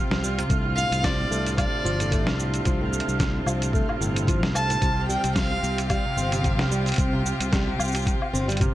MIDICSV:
0, 0, Header, 1, 7, 480
1, 0, Start_track
1, 0, Tempo, 540541
1, 441, Time_signature, 4, 2, 24, 8
1, 7761, End_track
2, 0, Start_track
2, 0, Title_t, "Synth texture"
2, 0, Program_c, 0, 99
2, 0, Note_on_c, 0, 89, 78
2, 7761, Note_off_c, 0, 89, 0
2, 7761, End_track
3, 0, Start_track
3, 0, Title_t, "Violin"
3, 0, Program_c, 1, 40
3, 678, Note_on_c, 1, 77, 104
3, 923, Note_on_c, 1, 74, 92
3, 937, Note_off_c, 1, 77, 0
3, 1395, Note_off_c, 1, 74, 0
3, 1401, Note_on_c, 1, 74, 83
3, 2086, Note_off_c, 1, 74, 0
3, 4042, Note_on_c, 1, 81, 110
3, 4488, Note_off_c, 1, 81, 0
3, 4522, Note_on_c, 1, 79, 90
3, 4745, Note_off_c, 1, 79, 0
3, 4760, Note_on_c, 1, 77, 98
3, 5207, Note_off_c, 1, 77, 0
3, 5232, Note_on_c, 1, 77, 81
3, 5921, Note_off_c, 1, 77, 0
3, 7761, End_track
4, 0, Start_track
4, 0, Title_t, "String quartet"
4, 0, Program_c, 2, 48
4, 0, Note_on_c, 2, 48, 82
4, 0, Note_on_c, 2, 60, 68
4, 0, Note_on_c, 2, 65, 71
4, 0, Note_on_c, 2, 67, 85
4, 408, Note_off_c, 2, 60, 0
4, 408, Note_off_c, 2, 67, 0
4, 447, Note_on_c, 2, 60, 71
4, 447, Note_on_c, 2, 62, 75
4, 4249, Note_off_c, 2, 62, 0
4, 4249, Note_off_c, 2, 65, 0
4, 4275, Note_on_c, 2, 65, 79
4, 4276, Note_on_c, 2, 67, 90
4, 7761, Note_off_c, 2, 48, 0
4, 7761, Note_off_c, 2, 60, 0
4, 7761, Note_off_c, 2, 65, 0
4, 7761, Note_off_c, 2, 67, 0
4, 7761, End_track
5, 0, Start_track
5, 0, Title_t, "Steel-string acoustic guitar"
5, 0, Program_c, 3, 25
5, 0, Note_on_c, 3, 48, 72
5, 194, Note_off_c, 3, 48, 0
5, 206, Note_on_c, 3, 55, 94
5, 325, Note_off_c, 3, 55, 0
5, 341, Note_on_c, 3, 48, 70
5, 434, Note_off_c, 3, 48, 0
5, 444, Note_on_c, 3, 57, 65
5, 564, Note_off_c, 3, 57, 0
5, 579, Note_on_c, 3, 45, 71
5, 673, Note_off_c, 3, 45, 0
5, 682, Note_on_c, 3, 45, 60
5, 912, Note_off_c, 3, 45, 0
5, 925, Note_on_c, 3, 53, 84
5, 1045, Note_off_c, 3, 53, 0
5, 1060, Note_on_c, 3, 45, 70
5, 1153, Note_off_c, 3, 45, 0
5, 1162, Note_on_c, 3, 57, 71
5, 1283, Note_off_c, 3, 57, 0
5, 1299, Note_on_c, 3, 45, 70
5, 1393, Note_off_c, 3, 45, 0
5, 1406, Note_on_c, 3, 45, 74
5, 1633, Note_off_c, 3, 45, 0
5, 1642, Note_on_c, 3, 53, 94
5, 1763, Note_off_c, 3, 53, 0
5, 1775, Note_on_c, 3, 45, 69
5, 1871, Note_off_c, 3, 45, 0
5, 1882, Note_on_c, 3, 57, 74
5, 2003, Note_off_c, 3, 57, 0
5, 2015, Note_on_c, 3, 45, 69
5, 2111, Note_off_c, 3, 45, 0
5, 2120, Note_on_c, 3, 45, 78
5, 2350, Note_off_c, 3, 45, 0
5, 2362, Note_on_c, 3, 53, 91
5, 2483, Note_off_c, 3, 53, 0
5, 2498, Note_on_c, 3, 45, 69
5, 2592, Note_off_c, 3, 45, 0
5, 2597, Note_on_c, 3, 57, 65
5, 2721, Note_off_c, 3, 57, 0
5, 2731, Note_on_c, 3, 45, 65
5, 2827, Note_off_c, 3, 45, 0
5, 2837, Note_on_c, 3, 45, 66
5, 3069, Note_off_c, 3, 45, 0
5, 3075, Note_on_c, 3, 53, 90
5, 3199, Note_off_c, 3, 53, 0
5, 3210, Note_on_c, 3, 45, 67
5, 3308, Note_off_c, 3, 45, 0
5, 3317, Note_on_c, 3, 57, 78
5, 3441, Note_off_c, 3, 57, 0
5, 3453, Note_on_c, 3, 45, 74
5, 3548, Note_off_c, 3, 45, 0
5, 3559, Note_on_c, 3, 45, 73
5, 3790, Note_off_c, 3, 45, 0
5, 3797, Note_on_c, 3, 53, 91
5, 3921, Note_off_c, 3, 53, 0
5, 3934, Note_on_c, 3, 45, 74
5, 4030, Note_off_c, 3, 45, 0
5, 4039, Note_on_c, 3, 57, 76
5, 4162, Note_off_c, 3, 57, 0
5, 4170, Note_on_c, 3, 45, 70
5, 4268, Note_off_c, 3, 45, 0
5, 4282, Note_on_c, 3, 48, 73
5, 4512, Note_off_c, 3, 48, 0
5, 4520, Note_on_c, 3, 55, 89
5, 4642, Note_off_c, 3, 55, 0
5, 4651, Note_on_c, 3, 48, 67
5, 4749, Note_off_c, 3, 48, 0
5, 4762, Note_on_c, 3, 60, 77
5, 4883, Note_off_c, 3, 60, 0
5, 4894, Note_on_c, 3, 48, 73
5, 4990, Note_off_c, 3, 48, 0
5, 5001, Note_on_c, 3, 48, 73
5, 5231, Note_off_c, 3, 48, 0
5, 5242, Note_on_c, 3, 55, 94
5, 5363, Note_off_c, 3, 55, 0
5, 5375, Note_on_c, 3, 48, 72
5, 5471, Note_off_c, 3, 48, 0
5, 5480, Note_on_c, 3, 60, 75
5, 5602, Note_off_c, 3, 60, 0
5, 5613, Note_on_c, 3, 48, 72
5, 5710, Note_off_c, 3, 48, 0
5, 5721, Note_on_c, 3, 48, 82
5, 5951, Note_off_c, 3, 48, 0
5, 5963, Note_on_c, 3, 55, 95
5, 6083, Note_off_c, 3, 55, 0
5, 6096, Note_on_c, 3, 48, 79
5, 6191, Note_off_c, 3, 48, 0
5, 6199, Note_on_c, 3, 60, 71
5, 6321, Note_off_c, 3, 60, 0
5, 6334, Note_on_c, 3, 48, 68
5, 6430, Note_off_c, 3, 48, 0
5, 6440, Note_on_c, 3, 48, 69
5, 6670, Note_off_c, 3, 48, 0
5, 6682, Note_on_c, 3, 55, 85
5, 6803, Note_off_c, 3, 55, 0
5, 6813, Note_on_c, 3, 48, 74
5, 6910, Note_off_c, 3, 48, 0
5, 6916, Note_on_c, 3, 60, 77
5, 7040, Note_off_c, 3, 60, 0
5, 7050, Note_on_c, 3, 48, 77
5, 7148, Note_off_c, 3, 48, 0
5, 7160, Note_on_c, 3, 48, 84
5, 7282, Note_off_c, 3, 48, 0
5, 7401, Note_on_c, 3, 60, 101
5, 7522, Note_off_c, 3, 60, 0
5, 7531, Note_on_c, 3, 55, 99
5, 7629, Note_off_c, 3, 55, 0
5, 7641, Note_on_c, 3, 48, 83
5, 7761, Note_off_c, 3, 48, 0
5, 7761, End_track
6, 0, Start_track
6, 0, Title_t, "Fingered electric bass"
6, 0, Program_c, 4, 33
6, 89, Note_on_c, 4, 36, 76
6, 379, Note_off_c, 4, 36, 0
6, 439, Note_on_c, 4, 36, 87
6, 740, Note_off_c, 4, 36, 0
6, 807, Note_on_c, 4, 36, 88
6, 1099, Note_off_c, 4, 36, 0
6, 1158, Note_on_c, 4, 36, 81
6, 1460, Note_off_c, 4, 36, 0
6, 1635, Note_on_c, 4, 31, 73
6, 2013, Note_off_c, 4, 31, 0
6, 2013, Note_on_c, 4, 36, 75
6, 2302, Note_off_c, 4, 36, 0
6, 2357, Note_on_c, 4, 36, 89
6, 2659, Note_off_c, 4, 36, 0
6, 2731, Note_on_c, 4, 36, 87
6, 3020, Note_off_c, 4, 36, 0
6, 3072, Note_on_c, 4, 36, 83
6, 3376, Note_off_c, 4, 36, 0
6, 3557, Note_on_c, 4, 31, 74
6, 3932, Note_off_c, 4, 31, 0
6, 3932, Note_on_c, 4, 36, 80
6, 4221, Note_off_c, 4, 36, 0
6, 4275, Note_on_c, 4, 36, 88
6, 4578, Note_off_c, 4, 36, 0
6, 4650, Note_on_c, 4, 36, 84
6, 4940, Note_off_c, 4, 36, 0
6, 4996, Note_on_c, 4, 36, 81
6, 5299, Note_off_c, 4, 36, 0
6, 5474, Note_on_c, 4, 31, 77
6, 5848, Note_off_c, 4, 31, 0
6, 5848, Note_on_c, 4, 36, 81
6, 6139, Note_off_c, 4, 36, 0
6, 6196, Note_on_c, 4, 36, 90
6, 6498, Note_off_c, 4, 36, 0
6, 6570, Note_on_c, 4, 36, 87
6, 6860, Note_off_c, 4, 36, 0
6, 6916, Note_on_c, 4, 36, 85
6, 7219, Note_off_c, 4, 36, 0
6, 7398, Note_on_c, 4, 31, 86
6, 7700, Note_off_c, 4, 31, 0
6, 7761, End_track
7, 0, Start_track
7, 0, Title_t, "Drums"
7, 101, Note_on_c, 9, 38, 71
7, 190, Note_off_c, 9, 38, 0
7, 213, Note_on_c, 9, 69, 79
7, 302, Note_off_c, 9, 69, 0
7, 342, Note_on_c, 9, 42, 52
7, 350, Note_on_c, 9, 69, 45
7, 431, Note_off_c, 9, 42, 0
7, 438, Note_off_c, 9, 69, 0
7, 440, Note_on_c, 9, 36, 92
7, 444, Note_on_c, 9, 42, 43
7, 451, Note_on_c, 9, 69, 32
7, 529, Note_off_c, 9, 36, 0
7, 533, Note_off_c, 9, 42, 0
7, 540, Note_off_c, 9, 69, 0
7, 692, Note_on_c, 9, 69, 71
7, 780, Note_off_c, 9, 69, 0
7, 820, Note_on_c, 9, 42, 52
7, 827, Note_on_c, 9, 69, 41
7, 909, Note_off_c, 9, 42, 0
7, 916, Note_off_c, 9, 69, 0
7, 920, Note_on_c, 9, 36, 97
7, 925, Note_on_c, 9, 38, 72
7, 925, Note_on_c, 9, 42, 39
7, 932, Note_on_c, 9, 69, 31
7, 1009, Note_off_c, 9, 36, 0
7, 1014, Note_off_c, 9, 38, 0
7, 1014, Note_off_c, 9, 42, 0
7, 1021, Note_off_c, 9, 69, 0
7, 1171, Note_on_c, 9, 69, 66
7, 1259, Note_off_c, 9, 69, 0
7, 1300, Note_on_c, 9, 42, 49
7, 1308, Note_on_c, 9, 69, 43
7, 1389, Note_off_c, 9, 42, 0
7, 1396, Note_off_c, 9, 69, 0
7, 1399, Note_on_c, 9, 36, 99
7, 1404, Note_on_c, 9, 42, 41
7, 1404, Note_on_c, 9, 77, 73
7, 1412, Note_on_c, 9, 69, 30
7, 1488, Note_off_c, 9, 36, 0
7, 1493, Note_off_c, 9, 42, 0
7, 1493, Note_off_c, 9, 77, 0
7, 1500, Note_off_c, 9, 69, 0
7, 1650, Note_on_c, 9, 69, 69
7, 1739, Note_off_c, 9, 69, 0
7, 1776, Note_on_c, 9, 42, 50
7, 1784, Note_on_c, 9, 69, 38
7, 1865, Note_off_c, 9, 42, 0
7, 1872, Note_off_c, 9, 69, 0
7, 1878, Note_on_c, 9, 36, 100
7, 1883, Note_on_c, 9, 42, 41
7, 1890, Note_on_c, 9, 69, 32
7, 1967, Note_off_c, 9, 36, 0
7, 1972, Note_off_c, 9, 42, 0
7, 1979, Note_off_c, 9, 69, 0
7, 2014, Note_on_c, 9, 38, 67
7, 2102, Note_off_c, 9, 38, 0
7, 2127, Note_on_c, 9, 69, 71
7, 2216, Note_off_c, 9, 69, 0
7, 2252, Note_on_c, 9, 42, 47
7, 2260, Note_on_c, 9, 69, 45
7, 2341, Note_off_c, 9, 42, 0
7, 2348, Note_off_c, 9, 69, 0
7, 2357, Note_on_c, 9, 36, 86
7, 2357, Note_on_c, 9, 42, 44
7, 2364, Note_on_c, 9, 69, 32
7, 2445, Note_off_c, 9, 42, 0
7, 2446, Note_off_c, 9, 36, 0
7, 2453, Note_off_c, 9, 69, 0
7, 2602, Note_on_c, 9, 69, 76
7, 2665, Note_on_c, 9, 42, 54
7, 2691, Note_off_c, 9, 69, 0
7, 2740, Note_on_c, 9, 69, 40
7, 2754, Note_off_c, 9, 42, 0
7, 2829, Note_off_c, 9, 69, 0
7, 2836, Note_on_c, 9, 36, 99
7, 2841, Note_on_c, 9, 38, 64
7, 2841, Note_on_c, 9, 42, 39
7, 2848, Note_on_c, 9, 69, 29
7, 2924, Note_off_c, 9, 36, 0
7, 2929, Note_off_c, 9, 38, 0
7, 2929, Note_off_c, 9, 42, 0
7, 2936, Note_off_c, 9, 69, 0
7, 3078, Note_on_c, 9, 77, 68
7, 3085, Note_on_c, 9, 69, 68
7, 3167, Note_off_c, 9, 77, 0
7, 3174, Note_off_c, 9, 69, 0
7, 3214, Note_on_c, 9, 42, 52
7, 3221, Note_on_c, 9, 69, 42
7, 3303, Note_off_c, 9, 42, 0
7, 3310, Note_off_c, 9, 69, 0
7, 3315, Note_on_c, 9, 36, 102
7, 3328, Note_on_c, 9, 69, 30
7, 3404, Note_off_c, 9, 36, 0
7, 3417, Note_off_c, 9, 69, 0
7, 3454, Note_on_c, 9, 77, 56
7, 3543, Note_off_c, 9, 77, 0
7, 3566, Note_on_c, 9, 69, 72
7, 3655, Note_off_c, 9, 69, 0
7, 3697, Note_on_c, 9, 42, 54
7, 3704, Note_on_c, 9, 69, 41
7, 3786, Note_off_c, 9, 42, 0
7, 3793, Note_off_c, 9, 69, 0
7, 3795, Note_on_c, 9, 36, 98
7, 3802, Note_on_c, 9, 42, 38
7, 3809, Note_on_c, 9, 69, 30
7, 3884, Note_off_c, 9, 36, 0
7, 3891, Note_off_c, 9, 42, 0
7, 3898, Note_off_c, 9, 69, 0
7, 3935, Note_on_c, 9, 38, 68
7, 4024, Note_off_c, 9, 38, 0
7, 4040, Note_on_c, 9, 77, 63
7, 4047, Note_on_c, 9, 69, 68
7, 4129, Note_off_c, 9, 77, 0
7, 4136, Note_off_c, 9, 69, 0
7, 4175, Note_on_c, 9, 42, 52
7, 4182, Note_on_c, 9, 69, 42
7, 4263, Note_off_c, 9, 42, 0
7, 4271, Note_off_c, 9, 69, 0
7, 4276, Note_on_c, 9, 36, 90
7, 4279, Note_on_c, 9, 42, 49
7, 4286, Note_on_c, 9, 69, 31
7, 4364, Note_off_c, 9, 36, 0
7, 4368, Note_off_c, 9, 42, 0
7, 4375, Note_off_c, 9, 69, 0
7, 4525, Note_on_c, 9, 69, 66
7, 4614, Note_off_c, 9, 69, 0
7, 4652, Note_on_c, 9, 42, 55
7, 4659, Note_on_c, 9, 69, 39
7, 4740, Note_off_c, 9, 42, 0
7, 4748, Note_off_c, 9, 69, 0
7, 4756, Note_on_c, 9, 36, 92
7, 4757, Note_on_c, 9, 38, 70
7, 4757, Note_on_c, 9, 42, 43
7, 4764, Note_on_c, 9, 69, 32
7, 4845, Note_off_c, 9, 36, 0
7, 4846, Note_off_c, 9, 38, 0
7, 4846, Note_off_c, 9, 42, 0
7, 4853, Note_off_c, 9, 69, 0
7, 5006, Note_on_c, 9, 69, 61
7, 5094, Note_off_c, 9, 69, 0
7, 5136, Note_on_c, 9, 42, 58
7, 5143, Note_on_c, 9, 69, 40
7, 5224, Note_off_c, 9, 42, 0
7, 5231, Note_off_c, 9, 69, 0
7, 5236, Note_on_c, 9, 36, 106
7, 5238, Note_on_c, 9, 42, 45
7, 5238, Note_on_c, 9, 77, 76
7, 5245, Note_on_c, 9, 69, 31
7, 5325, Note_off_c, 9, 36, 0
7, 5327, Note_off_c, 9, 42, 0
7, 5327, Note_off_c, 9, 77, 0
7, 5334, Note_off_c, 9, 69, 0
7, 5485, Note_on_c, 9, 69, 69
7, 5574, Note_off_c, 9, 69, 0
7, 5614, Note_on_c, 9, 42, 49
7, 5621, Note_on_c, 9, 69, 39
7, 5703, Note_off_c, 9, 42, 0
7, 5710, Note_off_c, 9, 69, 0
7, 5717, Note_on_c, 9, 36, 97
7, 5721, Note_on_c, 9, 42, 40
7, 5728, Note_on_c, 9, 69, 31
7, 5806, Note_off_c, 9, 36, 0
7, 5810, Note_off_c, 9, 42, 0
7, 5817, Note_off_c, 9, 69, 0
7, 5853, Note_on_c, 9, 38, 72
7, 5942, Note_off_c, 9, 38, 0
7, 5965, Note_on_c, 9, 69, 67
7, 6053, Note_off_c, 9, 69, 0
7, 6093, Note_on_c, 9, 42, 23
7, 6100, Note_on_c, 9, 69, 37
7, 6111, Note_off_c, 9, 42, 0
7, 6111, Note_on_c, 9, 42, 27
7, 6117, Note_off_c, 9, 42, 0
7, 6117, Note_on_c, 9, 42, 35
7, 6144, Note_off_c, 9, 42, 0
7, 6144, Note_on_c, 9, 42, 35
7, 6162, Note_off_c, 9, 42, 0
7, 6162, Note_on_c, 9, 42, 44
7, 6182, Note_off_c, 9, 42, 0
7, 6182, Note_on_c, 9, 42, 47
7, 6189, Note_off_c, 9, 69, 0
7, 6197, Note_on_c, 9, 36, 98
7, 6200, Note_off_c, 9, 42, 0
7, 6200, Note_on_c, 9, 42, 48
7, 6207, Note_on_c, 9, 69, 32
7, 6286, Note_off_c, 9, 36, 0
7, 6288, Note_off_c, 9, 42, 0
7, 6296, Note_off_c, 9, 69, 0
7, 6447, Note_on_c, 9, 69, 67
7, 6535, Note_off_c, 9, 69, 0
7, 6575, Note_on_c, 9, 42, 58
7, 6583, Note_on_c, 9, 69, 39
7, 6664, Note_off_c, 9, 42, 0
7, 6671, Note_off_c, 9, 69, 0
7, 6677, Note_on_c, 9, 36, 101
7, 6683, Note_on_c, 9, 38, 76
7, 6683, Note_on_c, 9, 42, 46
7, 6690, Note_on_c, 9, 69, 28
7, 6766, Note_off_c, 9, 36, 0
7, 6772, Note_off_c, 9, 38, 0
7, 6772, Note_off_c, 9, 42, 0
7, 6779, Note_off_c, 9, 69, 0
7, 6922, Note_on_c, 9, 77, 75
7, 6929, Note_on_c, 9, 69, 64
7, 6962, Note_off_c, 9, 69, 0
7, 6962, Note_on_c, 9, 69, 51
7, 6994, Note_off_c, 9, 69, 0
7, 6994, Note_on_c, 9, 69, 43
7, 7010, Note_off_c, 9, 77, 0
7, 7030, Note_off_c, 9, 69, 0
7, 7030, Note_on_c, 9, 69, 32
7, 7057, Note_on_c, 9, 42, 56
7, 7064, Note_off_c, 9, 69, 0
7, 7064, Note_on_c, 9, 69, 42
7, 7093, Note_off_c, 9, 69, 0
7, 7093, Note_on_c, 9, 69, 26
7, 7119, Note_off_c, 9, 69, 0
7, 7119, Note_on_c, 9, 69, 21
7, 7145, Note_off_c, 9, 69, 0
7, 7145, Note_on_c, 9, 69, 19
7, 7146, Note_off_c, 9, 42, 0
7, 7159, Note_on_c, 9, 36, 94
7, 7164, Note_on_c, 9, 42, 43
7, 7172, Note_off_c, 9, 69, 0
7, 7172, Note_on_c, 9, 69, 30
7, 7247, Note_off_c, 9, 36, 0
7, 7253, Note_off_c, 9, 42, 0
7, 7260, Note_off_c, 9, 69, 0
7, 7298, Note_on_c, 9, 77, 57
7, 7387, Note_off_c, 9, 77, 0
7, 7414, Note_on_c, 9, 69, 73
7, 7503, Note_off_c, 9, 69, 0
7, 7539, Note_on_c, 9, 42, 25
7, 7547, Note_on_c, 9, 69, 37
7, 7566, Note_off_c, 9, 42, 0
7, 7566, Note_on_c, 9, 42, 31
7, 7609, Note_off_c, 9, 42, 0
7, 7609, Note_on_c, 9, 42, 43
7, 7635, Note_off_c, 9, 69, 0
7, 7638, Note_on_c, 9, 36, 104
7, 7647, Note_off_c, 9, 42, 0
7, 7647, Note_on_c, 9, 42, 44
7, 7654, Note_on_c, 9, 69, 31
7, 7727, Note_off_c, 9, 36, 0
7, 7735, Note_off_c, 9, 42, 0
7, 7743, Note_off_c, 9, 69, 0
7, 7761, End_track
0, 0, End_of_file